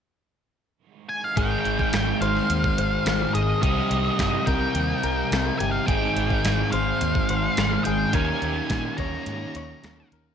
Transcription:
1.09 lead electric guitar G#5
1.24 lead electric guitar F5
1.36 fingered electric bass G#1, distorted electric guitar G#2 D#3 G#3, overdriven electric guitar C4, clean electric guitar G#4, lead electric guitar G5, kick, closed hi-hat
1.40 overdriven electric guitar D#4
1.65 fingered electric bass G#1, closed hi-hat
1.79 kick
1.93 fingered electric bass G#1, snare, closed hi-hat
2.21 fingered electric bass G#1, distorted electric guitar G#2 D#3 G#3, clean electric guitar C5, lead electric guitar F5, closed hi-hat
2.37 snare
2.50 fingered electric bass D#2, closed hi-hat
2.64 kick
2.78 fingered electric bass G#1, clean electric guitar C5, closed hi-hat
3.06 fingered electric bass G#1, distorted electric guitar G#2 D#3 G#3, snare, closed hi-hat
3.34 fingered electric bass G#1, clean electric guitar G#4, lead electric guitar D#5, closed hi-hat
3.62 fingered electric bass C2, distorted electric guitar C3 G3 C4, overdriven electric guitar D#4, clean electric guitar G4, lead electric guitar D#5, kick, closed hi-hat
3.90 fingered electric bass C2, closed hi-hat
4.19 fingered electric bass G2, kick, snare, closed hi-hat
4.46 fingered electric bass C2, distorted electric guitar C3 G3 C4, clean electric guitar A#4, lead electric guitar G5, kick, closed hi-hat
4.75 fingered electric bass D#2, closed hi-hat
5.03 fingered electric bass C2, clean electric guitar A#4, closed hi-hat
5.31 fingered electric bass C2, distorted electric guitar C3 G3 C4, snare, closed hi-hat
5.59 fingered electric bass G1, clean electric guitar G4, lead electric guitar G#5, closed hi-hat
5.72 lead electric guitar F5
5.86 fingered electric bass G#1, distorted electric guitar G#2 D#3 G#3, overdriven electric guitar C4, clean electric guitar G#4, lead electric guitar G5, kick, closed hi-hat
5.90 overdriven electric guitar D#4
6.16 fingered electric bass G#1, closed hi-hat
6.30 kick
6.44 fingered electric bass G#1, snare, closed hi-hat
6.72 fingered electric bass G#1, distorted electric guitar G#2 D#3 G#3, clean electric guitar C5, lead electric guitar F5, closed hi-hat
7.01 fingered electric bass D#2, closed hi-hat
7.15 kick
7.29 fingered electric bass G#1, clean electric guitar C5, closed hi-hat
7.57 fingered electric bass G#1, distorted electric guitar G#2 D#3 G#3, snare, closed hi-hat
7.84 fingered electric bass G#1, clean electric guitar G#4, lead electric guitar G5, closed hi-hat
8.13 fingered electric bass D#2, distorted electric guitar D#3 A#3 D#4, overdriven electric guitar C#4 G4, clean electric guitar A#4, lead electric guitar G#5, kick, closed hi-hat
8.42 fingered electric bass D#2, closed hi-hat
8.70 fingered electric bass A#2, kick, snare, closed hi-hat
8.97 fingered electric bass D#2, distorted electric guitar D#3 A#3 D#4, clean electric guitar C#5, lead electric guitar A#5, kick, closed hi-hat
9.26 fingered electric bass G#2, closed hi-hat
9.55 fingered electric bass D#2, clean electric guitar C#5, closed hi-hat
9.83 fingered electric bass D#2, distorted electric guitar D#3 A#3 D#4, snare, closed hi-hat
10.12 fingered electric bass D#2, clean electric guitar A#4, closed hi-hat

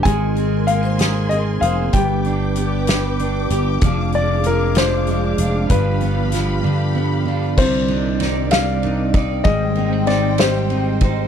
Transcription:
Already playing: steel-string acoustic guitar B3 D4 G4, clean electric guitar B3 D4
0.03 fretless electric bass G#1, clean electric guitar D#3 G#4, steel-string acoustic guitar G#3, string section A#4 G#5 C6, grand piano G#5, kick, closed hi-hat
0.36 clean electric guitar C4, steel-string acoustic guitar G#4, closed hi-hat
0.67 clean electric guitar A#3, steel-string acoustic guitar A#4, grand piano F5, closed hi-hat
0.83 steel-string acoustic guitar C5
0.99 steel-string acoustic guitar A#3, clean electric guitar G#4, snare, closed hi-hat
1.29 clean electric guitar C4, steel-string acoustic guitar G#4, grand piano D#5, closed hi-hat
1.61 fretless electric bass F1, clean electric guitar G#4, steel-string acoustic guitar C5, grand piano F5, closed hi-hat
1.93 fretless electric bass G1, steel-string acoustic guitar G3, clean electric guitar B3 G4, string section B4 G5 D6, grand piano G5, kick, closed hi-hat
2.24 steel-string acoustic guitar D4, clean electric guitar D4, closed hi-hat
2.56 clean electric guitar B3, steel-string acoustic guitar G4, closed hi-hat
2.87 steel-string acoustic guitar B3, clean electric guitar G4, snare, closed hi-hat
3.19 steel-string acoustic guitar D4, clean electric guitar D4, closed hi-hat
3.50 fretless electric bass G1, steel-string acoustic guitar G4, clean electric guitar G4, closed hi-hat
3.81 fretless electric bass F1, clean electric guitar F3 D4, steel-string acoustic guitar F3, string section G#4 F5, kick, closed hi-hat
4.12 clean electric guitar G#3, steel-string acoustic guitar D4, grand piano D5, closed hi-hat
4.44 clean electric guitar F3, steel-string acoustic guitar F4, grand piano A#4, closed hi-hat
4.75 steel-string acoustic guitar G#3, clean electric guitar D4, grand piano C5, snare, closed hi-hat
5.07 clean electric guitar G#3, steel-string acoustic guitar D4, closed hi-hat
5.38 fretless electric bass F1, clean electric guitar D4, steel-string acoustic guitar F4, closed hi-hat
5.70 fretless electric bass G1, steel-string acoustic guitar G2, clean electric guitar F3 D4, string section G4 B5, grand piano B4, kick, closed hi-hat
6.01 clean electric guitar B3, steel-string acoustic guitar B3, closed hi-hat
6.32 clean electric guitar F3, steel-string acoustic guitar F4, snare, closed hi-hat
6.64 steel-string acoustic guitar D3, clean electric guitar D4
6.95 steel-string acoustic guitar B3, clean electric guitar B3
7.25 clean electric guitar D4, steel-string acoustic guitar F4
7.57 fretless electric bass C2, steel-string acoustic guitar C3, string section D#3 C4 D5, clean electric guitar G3, grand piano C5, kick, crash
7.88 clean electric guitar D4, steel-string acoustic guitar D#4, ride
8.20 clean electric guitar D#4, steel-string acoustic guitar D5, snare, ride
8.51 clean electric guitar G3, steel-string acoustic guitar G4, grand piano F5, snare, ride
8.83 clean electric guitar D4, steel-string acoustic guitar D#4, ride
9.14 clean electric guitar D#4, steel-string acoustic guitar D5, kick, ride
9.44 fretless electric bass G#1, clean electric guitar G3, steel-string acoustic guitar G#3, string section C4 C5 G5, grand piano D#5, kick, ride
9.75 clean electric guitar A#3, steel-string acoustic guitar D#4, ride
9.93 clean electric guitar C4
10.07 clean electric guitar D#4, steel-string acoustic guitar C5, grand piano D5, snare, ride
10.38 clean electric guitar G3, steel-string acoustic guitar G4, grand piano C5, snare, ride
10.70 clean electric guitar C4, steel-string acoustic guitar D#4, ride
11.01 clean electric guitar D#4, steel-string acoustic guitar C5, kick, ride

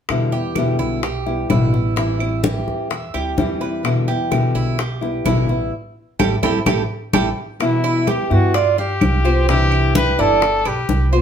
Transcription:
0.09 upright bass E2, nylon-string guitar B2 D3 G3 B3 E4, high bongo, high conga, claves
0.32 nylon-string guitar G3 B3 E4, cuban tres G4, high conga
0.55 nylon-string guitar B2 D3 G3 B3 E4, high bongo, high conga, claves
0.79 upright bass B1, cuban tres E4, high bongo, high conga
1.03 cuban tres G4, muted nylon-string guitar stroke, high bongo, high conga
1.26 nylon-string guitar G3 B3 E4, high bongo, high conga
1.49 upright bass A1, nylon-string guitar B2 D3 G3 B3 E4, cuban tres E4, high bongo, low bongo, high conga, claves
1.73 nylon-string guitar G3 B3 E4, high bongo, high conga
1.96 nylon-string guitar E3 G3 C4 E4, cuban tres E4, high bongo, high conga
2.19 nylon-string guitar G3 C4 E4, high conga, claves
2.43 nylon-string guitar E3 G3 C4 E4, cuban tres G4, high bongo, high conga
2.67 upright bass E2, high bongo, high conga
2.90 cuban tres E5, muted nylon-string guitar stroke, high bongo, high conga
3.14 upright bass D2, nylon-string guitar G3 C4 E4, cuban tres G4, high bongo, high conga, claves
3.37 upright bass E2, nylon-string guitar E3 G3 C4 E4, high bongo, low bongo, high conga
3.60 nylon-string guitar G3 C4 E4, cuban tres B4, high bongo
3.83 nylon-string guitar B2 D3 G3 B3 E4, high bongo, high conga, claves
4.07 nylon-string guitar G3 B3 E4, cuban tres G4, high conga
4.31 nylon-string guitar B2 D3 G3 B3 E4, high bongo, high conga, claves
4.55 upright bass B1, cuban tres E4, high bongo, high conga
4.78 cuban tres G4, muted nylon-string guitar stroke, high bongo, high conga
5.01 nylon-string guitar G3 B3 E4, high bongo, high conga
5.24 upright bass A1, nylon-string guitar B2 D3 G3 B3 E4, cuban tres E4, high bongo, low bongo, high conga, claves
5.48 nylon-string guitar G3 B3 E4, high bongo, high conga
6.19 upright bass A1, nylon-string guitar G3 A3 C4, cuban tres E4 G4 A4, high bongo, high conga, claves
6.43 upright bass A1, nylon-string guitar G3 A3 C4, cuban tres E4 G4 A4, high bongo, high conga, claves
6.66 upright bass A1, nylon-string guitar G3 A3 C4, cuban tres E4 G4 A4, high bongo, high conga, claves
7.13 upright bass A1, nylon-string guitar G3 A3 C4, cuban tres E4 G4 A4, high bongo, high conga, claves
7.60 nylon-string guitar B2 E3 G3 B3 E4, trumpet E4, high bongo, high conga, claves
7.84 cuban tres E4, high conga
8.07 nylon-string guitar E3 G3 B3 E4, cuban tres G4, trumpet G4, high bongo, high conga, claves
8.30 upright bass G2, nylon-string guitar E3 G3 B3 E4, trumpet F#4, high bongo, high conga
8.54 trumpet F4, cuban tres D5, muted nylon-string guitar stroke, high bongo, high conga
8.78 trumpet G4, cuban tres F5, high bongo, high conga
9.01 upright bass C2, high bongo, low bongo, high conga, claves
9.24 nylon-string guitar B3 F4, cuban tres C5, high bongo, high conga
9.48 nylon-string guitar C3 E3 G3 D4 E4, cuban tres E4, trumpet G4, high bongo, high conga
9.71 high conga, claves
9.94 nylon-string guitar E3 G3 D4 E4, cuban tres G4, trumpet B4, high bongo, high conga
10.19 upright bass G1, nylon-string guitar E3 G3 D4 E4, trumpet A4, cuban tres D5, high bongo, high conga
10.42 muted nylon-string guitar stroke, high bongo, high conga
10.65 upright bass B1, trumpet G4, cuban tres B4, high bongo, high conga, claves
10.89 upright bass C2, high bongo, low bongo, high conga
11.13 nylon-string guitar B3 F4, cuban tres C5, high bongo

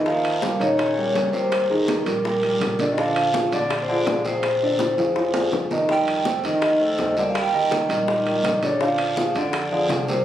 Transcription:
Already playing: upright bass D#2
0.04 grand piano D#3 D#4 D#5, baritone saxophone F3, vibraphone F5, high bongo, high conga, long guiro
0.24 high conga, high timbale
0.42 grand piano G3 G4 A#4, high bongo, high conga, low timbale, short guiro
0.58 upright bass A#1, baritone saxophone C#3, grand piano D#3 D#4 D#5, vibraphone C#5, high bongo, high conga, high timbale, short guiro
0.77 baritone saxophone C#3, vibraphone C#5, high bongo, high conga, high timbale, long guiro
0.97 grand piano G3 G4 A#4, high conga
1.15 upright bass D#2, grand piano G3 G4 A#4, high bongo, low bongo, high conga, high timbale, low timbale, short guiro
1.32 baritone saxophone C3, grand piano G3 G4 A#4, vibraphone C5, high bongo, short guiro
1.52 high bongo, high conga, high timbale, long guiro
1.69 baritone saxophone G#2, grand piano D#3 D#4 D#5, vibraphone G#4, high conga
1.86 baritone saxophone G2, vibraphone G4, high bongo, high conga, high timbale, low timbale, short guiro
2.06 upright bass A#1, baritone saxophone A#2, grand piano G3 G4 A#4, vibraphone A#4, high bongo, high conga, high timbale, short guiro
2.24 baritone saxophone A#2, grand piano G3 G4 A#4, vibraphone A#4, high bongo, high conga, long guiro
2.43 grand piano G3 G4 A#4, high conga, high timbale
2.60 upright bass A#1, high bongo, low bongo, high conga, high timbale, low timbale, short guiro
2.79 grand piano D3 D4 D5, high bongo, high conga, high timbale, short guiro
2.92 baritone saxophone D#3, vibraphone D#5
2.98 grand piano D3 D4 D5, baritone saxophone F3, vibraphone F5, high bongo, high conga, long guiro
3.16 high conga, high timbale
3.34 grand piano F3 F4 G#4, high bongo, high conga, low timbale, short guiro
3.52 upright bass A#2, grand piano D3 D4 D5, baritone saxophone D3, vibraphone D5, high bongo, high conga, high timbale, short guiro
3.70 high bongo, high conga, high timbale, long guiro
3.82 baritone saxophone C3, vibraphone C5
3.88 baritone saxophone D3, grand piano F3 F4 G#4, vibraphone D5, high conga
4.06 upright bass A#2, grand piano F3 F4 G#4, high bongo, low bongo, high conga, high timbale, low timbale, short guiro
4.25 baritone saxophone C3, grand piano F3 F4 G#4, vibraphone C5, high bongo, high conga, short guiro
4.43 high bongo, high conga, high timbale, long guiro
4.61 grand piano D3 D4 D5, high conga
4.79 high bongo, high conga, high timbale, short guiro
4.98 upright bass F2, grand piano F3 F4 G#4, high bongo, high conga, high timbale, short guiro
5.16 grand piano F3 F4 G#4, high bongo, high conga, high timbale, long guiro
5.34 grand piano F3 F4 G#4, high conga, low timbale
5.52 upright bass F2, high bongo, low bongo, high conga, low timbale, short guiro
5.71 grand piano D#3 D#4 D#5, high bongo, high conga, low timbale, short guiro
5.89 grand piano D#3 D#4 D#5, baritone saxophone G3, vibraphone G5, high bongo, high conga, long guiro
6.07 high conga, high timbale
6.25 grand piano A3 A4 C5, high bongo, high conga, low timbale, short guiro
6.44 upright bass F2, grand piano D#3 D#4 D#5, baritone saxophone D#3, vibraphone D#5, high bongo, high conga, high timbale, short guiro
6.62 baritone saxophone D#3, vibraphone D#5, high bongo, high conga, high timbale, long guiro
6.80 grand piano A3 A4 C5, high conga
6.98 upright bass D#2, grand piano A3 A4 C5, high bongo, low bongo, high conga, high timbale, low timbale, short guiro
7.17 baritone saxophone D3, grand piano G3 G4 A#4, vibraphone D5, high bongo, high conga, short guiro
7.29 baritone saxophone F3, vibraphone F5
7.35 baritone saxophone G3, vibraphone G5, high bongo, high conga, high timbale, long guiro
7.54 grand piano D#3 D#4 D#5, high conga
7.71 high bongo, high conga, high timbale, low timbale, short guiro
7.89 upright bass A#1, baritone saxophone D#3, grand piano G3 G4 A#4, vibraphone D#5, high bongo, high conga, high timbale, short guiro
8.08 baritone saxophone D#3, grand piano G3 G4 A#4, vibraphone D#5, high bongo, high conga, long guiro
8.26 grand piano G3 G4 A#4, high conga, high timbale
8.43 upright bass A#1, high bongo, low bongo, high conga, high timbale, low timbale, short guiro
8.63 baritone saxophone C#3, grand piano D3 D4 D5, vibraphone C#5, high bongo, high conga, high timbale, short guiro
8.80 grand piano D3 D4 D5, baritone saxophone F3, vibraphone F5, high bongo, high conga, long guiro
8.98 high conga, high timbale
9.17 grand piano F3 F4 G#4, high bongo, high conga, low timbale, short guiro
9.35 upright bass F2, baritone saxophone D3, grand piano D3 D4 D5, vibraphone D5, high bongo, high conga, high timbale, short guiro
9.53 high bongo, high conga, high timbale, long guiro
9.71 baritone saxophone D3, grand piano F3 F4 G#4, vibraphone D5, high conga
9.89 upright bass C2, grand piano F3 F4 G#4, high bongo, low bongo, high conga, high timbale, low timbale, short guiro
10.08 baritone saxophone C3, grand piano G3 G4 A#4, vibraphone C5, high bongo, high conga, short guiro

